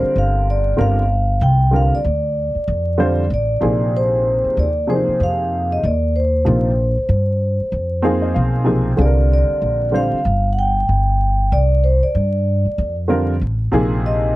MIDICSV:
0, 0, Header, 1, 5, 480
1, 0, Start_track
1, 0, Key_signature, -3, "minor"
1, 0, Tempo, 631579
1, 1071, Time_signature, 4, 2, 24, 8
1, 10913, End_track
2, 0, Start_track
2, 0, Title_t, "Vibraphone"
2, 0, Program_c, 0, 11
2, 0, Note_on_c, 0, 72, 80
2, 110, Note_off_c, 0, 72, 0
2, 139, Note_on_c, 0, 77, 87
2, 349, Note_off_c, 0, 77, 0
2, 382, Note_on_c, 0, 74, 82
2, 613, Note_off_c, 0, 74, 0
2, 615, Note_on_c, 0, 77, 91
2, 1083, Note_on_c, 0, 79, 99
2, 1097, Note_off_c, 0, 77, 0
2, 1324, Note_off_c, 0, 79, 0
2, 1337, Note_on_c, 0, 77, 94
2, 1472, Note_off_c, 0, 77, 0
2, 1480, Note_on_c, 0, 74, 84
2, 2493, Note_off_c, 0, 74, 0
2, 2536, Note_on_c, 0, 74, 83
2, 3014, Note_on_c, 0, 72, 91
2, 3018, Note_off_c, 0, 74, 0
2, 3452, Note_off_c, 0, 72, 0
2, 3492, Note_on_c, 0, 74, 89
2, 3724, Note_on_c, 0, 72, 77
2, 3728, Note_off_c, 0, 74, 0
2, 3965, Note_off_c, 0, 72, 0
2, 3977, Note_on_c, 0, 77, 86
2, 4350, Note_on_c, 0, 75, 80
2, 4360, Note_off_c, 0, 77, 0
2, 4432, Note_off_c, 0, 75, 0
2, 4447, Note_on_c, 0, 74, 74
2, 4680, Note_on_c, 0, 72, 70
2, 4686, Note_off_c, 0, 74, 0
2, 6325, Note_off_c, 0, 72, 0
2, 6851, Note_on_c, 0, 74, 79
2, 7065, Note_off_c, 0, 74, 0
2, 7094, Note_on_c, 0, 74, 90
2, 7568, Note_on_c, 0, 77, 92
2, 7577, Note_off_c, 0, 74, 0
2, 7967, Note_off_c, 0, 77, 0
2, 8000, Note_on_c, 0, 78, 73
2, 8037, Note_off_c, 0, 78, 0
2, 8045, Note_on_c, 0, 79, 89
2, 8761, Note_on_c, 0, 74, 96
2, 8780, Note_off_c, 0, 79, 0
2, 8997, Note_on_c, 0, 72, 81
2, 9003, Note_off_c, 0, 74, 0
2, 9143, Note_off_c, 0, 72, 0
2, 9145, Note_on_c, 0, 74, 74
2, 9830, Note_off_c, 0, 74, 0
2, 10687, Note_on_c, 0, 75, 91
2, 10911, Note_off_c, 0, 75, 0
2, 10913, End_track
3, 0, Start_track
3, 0, Title_t, "Upright piano"
3, 0, Program_c, 1, 0
3, 0, Note_on_c, 1, 50, 68
3, 0, Note_on_c, 1, 55, 61
3, 0, Note_on_c, 1, 60, 62
3, 0, Note_on_c, 1, 65, 58
3, 0, Note_on_c, 1, 70, 72
3, 550, Note_off_c, 1, 50, 0
3, 552, Note_off_c, 1, 55, 0
3, 554, Note_off_c, 1, 60, 0
3, 556, Note_off_c, 1, 65, 0
3, 558, Note_off_c, 1, 70, 0
3, 582, Note_on_c, 1, 50, 63
3, 584, Note_on_c, 1, 55, 59
3, 586, Note_on_c, 1, 60, 64
3, 595, Note_on_c, 1, 65, 64
3, 595, Note_on_c, 1, 70, 77
3, 769, Note_off_c, 1, 50, 0
3, 770, Note_off_c, 1, 55, 0
3, 771, Note_off_c, 1, 60, 0
3, 776, Note_off_c, 1, 65, 0
3, 776, Note_off_c, 1, 70, 0
3, 1299, Note_on_c, 1, 50, 62
3, 1302, Note_on_c, 1, 55, 55
3, 1308, Note_on_c, 1, 60, 55
3, 1311, Note_on_c, 1, 65, 59
3, 1316, Note_on_c, 1, 70, 66
3, 1488, Note_off_c, 1, 50, 0
3, 1489, Note_off_c, 1, 55, 0
3, 1492, Note_off_c, 1, 60, 0
3, 1494, Note_off_c, 1, 65, 0
3, 1496, Note_off_c, 1, 70, 0
3, 2263, Note_on_c, 1, 50, 77
3, 2265, Note_on_c, 1, 55, 70
3, 2270, Note_on_c, 1, 60, 68
3, 2274, Note_on_c, 1, 65, 73
3, 2279, Note_on_c, 1, 72, 86
3, 2450, Note_off_c, 1, 50, 0
3, 2451, Note_off_c, 1, 55, 0
3, 2453, Note_off_c, 1, 60, 0
3, 2455, Note_off_c, 1, 65, 0
3, 2458, Note_off_c, 1, 72, 0
3, 2740, Note_on_c, 1, 48, 67
3, 2745, Note_on_c, 1, 53, 58
3, 2749, Note_on_c, 1, 58, 67
3, 2750, Note_on_c, 1, 63, 61
3, 2756, Note_on_c, 1, 68, 80
3, 3523, Note_off_c, 1, 48, 0
3, 3526, Note_off_c, 1, 53, 0
3, 3528, Note_off_c, 1, 58, 0
3, 3528, Note_off_c, 1, 63, 0
3, 3532, Note_off_c, 1, 68, 0
3, 3702, Note_on_c, 1, 48, 61
3, 3706, Note_on_c, 1, 53, 60
3, 3708, Note_on_c, 1, 58, 57
3, 3716, Note_on_c, 1, 62, 46
3, 3720, Note_on_c, 1, 68, 74
3, 3763, Note_on_c, 1, 63, 60
3, 3773, Note_off_c, 1, 62, 0
3, 4388, Note_off_c, 1, 48, 0
3, 4390, Note_off_c, 1, 53, 0
3, 4392, Note_off_c, 1, 58, 0
3, 4397, Note_off_c, 1, 68, 0
3, 4419, Note_off_c, 1, 63, 0
3, 4901, Note_on_c, 1, 48, 61
3, 4902, Note_on_c, 1, 53, 58
3, 4908, Note_on_c, 1, 58, 52
3, 4911, Note_on_c, 1, 63, 54
3, 4914, Note_on_c, 1, 65, 65
3, 5089, Note_off_c, 1, 48, 0
3, 5089, Note_off_c, 1, 53, 0
3, 5092, Note_off_c, 1, 58, 0
3, 5094, Note_off_c, 1, 63, 0
3, 5095, Note_off_c, 1, 65, 0
3, 6098, Note_on_c, 1, 60, 77
3, 6103, Note_on_c, 1, 53, 69
3, 6105, Note_on_c, 1, 58, 70
3, 6108, Note_on_c, 1, 77, 67
3, 6111, Note_on_c, 1, 63, 73
3, 6116, Note_on_c, 1, 68, 82
3, 6244, Note_off_c, 1, 77, 0
3, 6248, Note_on_c, 1, 75, 59
3, 6340, Note_off_c, 1, 75, 0
3, 6341, Note_on_c, 1, 77, 69
3, 6561, Note_off_c, 1, 53, 0
3, 6566, Note_off_c, 1, 58, 0
3, 6568, Note_on_c, 1, 48, 71
3, 6569, Note_off_c, 1, 77, 0
3, 6571, Note_off_c, 1, 63, 0
3, 6572, Note_on_c, 1, 53, 67
3, 6573, Note_off_c, 1, 68, 0
3, 6577, Note_on_c, 1, 58, 65
3, 6579, Note_on_c, 1, 80, 66
3, 6582, Note_on_c, 1, 63, 68
3, 6585, Note_on_c, 1, 68, 78
3, 6762, Note_off_c, 1, 48, 0
3, 6764, Note_off_c, 1, 53, 0
3, 6767, Note_off_c, 1, 58, 0
3, 6769, Note_off_c, 1, 63, 0
3, 6771, Note_off_c, 1, 68, 0
3, 6786, Note_off_c, 1, 60, 0
3, 6808, Note_off_c, 1, 80, 0
3, 6816, Note_on_c, 1, 50, 65
3, 6821, Note_on_c, 1, 55, 60
3, 6825, Note_on_c, 1, 60, 57
3, 6828, Note_on_c, 1, 65, 63
3, 6833, Note_on_c, 1, 68, 59
3, 6882, Note_on_c, 1, 70, 69
3, 6892, Note_off_c, 1, 68, 0
3, 7505, Note_off_c, 1, 50, 0
3, 7508, Note_off_c, 1, 55, 0
3, 7510, Note_off_c, 1, 60, 0
3, 7512, Note_off_c, 1, 65, 0
3, 7538, Note_on_c, 1, 50, 68
3, 7539, Note_off_c, 1, 70, 0
3, 7544, Note_on_c, 1, 55, 59
3, 7550, Note_on_c, 1, 60, 56
3, 7550, Note_on_c, 1, 65, 60
3, 7557, Note_on_c, 1, 72, 78
3, 7727, Note_off_c, 1, 50, 0
3, 7730, Note_off_c, 1, 55, 0
3, 7733, Note_off_c, 1, 60, 0
3, 7733, Note_off_c, 1, 65, 0
3, 7737, Note_off_c, 1, 72, 0
3, 9940, Note_on_c, 1, 50, 71
3, 9945, Note_on_c, 1, 55, 67
3, 9948, Note_on_c, 1, 60, 70
3, 9953, Note_on_c, 1, 65, 74
3, 9956, Note_on_c, 1, 70, 81
3, 10128, Note_off_c, 1, 50, 0
3, 10131, Note_off_c, 1, 55, 0
3, 10132, Note_off_c, 1, 60, 0
3, 10135, Note_off_c, 1, 65, 0
3, 10136, Note_off_c, 1, 70, 0
3, 10425, Note_on_c, 1, 48, 82
3, 10429, Note_on_c, 1, 53, 71
3, 10436, Note_on_c, 1, 58, 79
3, 10438, Note_on_c, 1, 63, 72
3, 10442, Note_on_c, 1, 68, 94
3, 10913, Note_off_c, 1, 48, 0
3, 10913, Note_off_c, 1, 53, 0
3, 10913, Note_off_c, 1, 58, 0
3, 10913, Note_off_c, 1, 63, 0
3, 10913, Note_off_c, 1, 68, 0
3, 10913, End_track
4, 0, Start_track
4, 0, Title_t, "Upright bass"
4, 0, Program_c, 2, 32
4, 118, Note_on_c, 2, 31, 85
4, 571, Note_off_c, 2, 31, 0
4, 597, Note_on_c, 2, 31, 90
4, 1050, Note_off_c, 2, 31, 0
4, 1073, Note_on_c, 2, 36, 104
4, 1437, Note_off_c, 2, 36, 0
4, 1553, Note_on_c, 2, 38, 84
4, 1917, Note_off_c, 2, 38, 0
4, 2034, Note_on_c, 2, 41, 91
4, 2489, Note_off_c, 2, 41, 0
4, 2510, Note_on_c, 2, 33, 84
4, 2739, Note_off_c, 2, 33, 0
4, 2747, Note_on_c, 2, 34, 83
4, 3343, Note_off_c, 2, 34, 0
4, 3473, Note_on_c, 2, 39, 81
4, 3838, Note_off_c, 2, 39, 0
4, 3951, Note_on_c, 2, 41, 79
4, 4407, Note_off_c, 2, 41, 0
4, 4434, Note_on_c, 2, 39, 87
4, 4889, Note_off_c, 2, 39, 0
4, 4912, Note_on_c, 2, 34, 102
4, 5277, Note_off_c, 2, 34, 0
4, 5386, Note_on_c, 2, 43, 90
4, 5754, Note_off_c, 2, 43, 0
4, 5867, Note_on_c, 2, 41, 78
4, 6325, Note_off_c, 2, 41, 0
4, 6353, Note_on_c, 2, 35, 84
4, 6808, Note_off_c, 2, 35, 0
4, 6828, Note_on_c, 2, 36, 106
4, 7195, Note_off_c, 2, 36, 0
4, 7309, Note_on_c, 2, 34, 88
4, 7675, Note_off_c, 2, 34, 0
4, 7790, Note_on_c, 2, 31, 89
4, 8246, Note_off_c, 2, 31, 0
4, 8275, Note_on_c, 2, 31, 81
4, 8729, Note_off_c, 2, 31, 0
4, 8755, Note_on_c, 2, 36, 93
4, 9118, Note_off_c, 2, 36, 0
4, 9232, Note_on_c, 2, 43, 88
4, 9597, Note_off_c, 2, 43, 0
4, 9713, Note_on_c, 2, 41, 86
4, 10168, Note_off_c, 2, 41, 0
4, 10195, Note_on_c, 2, 33, 81
4, 10421, Note_off_c, 2, 33, 0
4, 10434, Note_on_c, 2, 34, 80
4, 10913, Note_off_c, 2, 34, 0
4, 10913, End_track
5, 0, Start_track
5, 0, Title_t, "Muted upright bass strokes"
5, 16, Note_on_c, 9, 29, 39
5, 92, Note_off_c, 9, 29, 0
5, 1459, Note_on_c, 9, 29, 41
5, 1535, Note_off_c, 9, 29, 0
5, 1938, Note_on_c, 9, 29, 41
5, 2014, Note_off_c, 9, 29, 0
5, 3378, Note_on_c, 9, 29, 45
5, 3454, Note_off_c, 9, 29, 0
5, 3860, Note_on_c, 9, 29, 39
5, 3936, Note_off_c, 9, 29, 0
5, 5299, Note_on_c, 9, 29, 42
5, 5375, Note_off_c, 9, 29, 0
5, 5776, Note_on_c, 9, 29, 42
5, 5852, Note_off_c, 9, 29, 0
5, 7215, Note_on_c, 9, 29, 44
5, 7291, Note_off_c, 9, 29, 0
5, 7698, Note_on_c, 9, 29, 44
5, 7774, Note_off_c, 9, 29, 0
5, 9141, Note_on_c, 9, 29, 42
5, 9217, Note_off_c, 9, 29, 0
5, 9615, Note_on_c, 9, 29, 43
5, 9691, Note_off_c, 9, 29, 0
5, 10913, End_track
0, 0, End_of_file